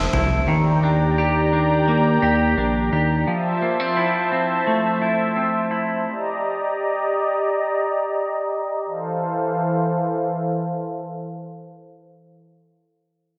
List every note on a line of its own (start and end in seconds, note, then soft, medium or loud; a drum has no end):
0.00 0.45 F3 medium
0.00 0.47 F3 medium
0.00 0.55 A3 medium
0.00 0.55 C4 medium
0.00 0.12 E4 medium
0.00 0.45 C5 medium
0.00 0.45 E5 medium
0.00 0.45 A5 medium
0.13 0.46 C2 medium
0.13 0.55 E4 medium
0.13 floor tom medium
0.48 2.19 D#2 loud
0.48 3.27 D#3 medium
0.48 3.24 G4 medium
0.48 3.24 D5 medium
0.48 3.24 G5 medium
0.48 3.24 A#5 medium
0.83 1.52 D4 medium
1.18 2.21 G4 medium
1.53 2.56 D4 medium
1.88 3.34 A#3 medium
2.22 2.56 D#2 medium
2.22 2.91 G4 medium
2.57 2.90 A#1 medium
2.57 3.34 D4 medium
2.92 3.25 D#2 medium
2.92 3.34 G4 medium
3.27 6.03 F3 medium
3.27 6.06 F3 medium
3.27 6.03 C5 medium
3.27 6.03 E5 medium
3.27 6.03 A5 medium
3.62 3.80 A#3 soft
3.80 4.31 C4 soft
3.97 5.00 E4 medium
4.32 5.35 C4 soft
4.67 6.13 A3 medium
5.02 5.70 E4 medium
5.36 6.13 C4 medium
5.71 6.13 E4 medium
6.06 8.82 G4 medium
6.06 8.82 D5 medium
6.06 8.82 D#5 medium
6.06 8.82 A#5 medium
8.85 12.40 E3 medium
8.85 12.40 A4 medium
8.85 12.40 C5 medium
8.85 12.40 F5 medium